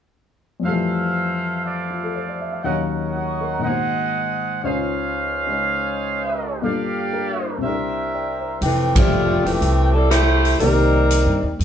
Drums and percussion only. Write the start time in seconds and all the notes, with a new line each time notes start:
8.62 open hi-hat
8.96 kick, ride
9.46 open hi-hat
9.62 open hi-hat
10.11 cross-stick, closed hi-hat
10.45 open hi-hat
10.60 open hi-hat
11.11 closed hi-hat
11.60 open hi-hat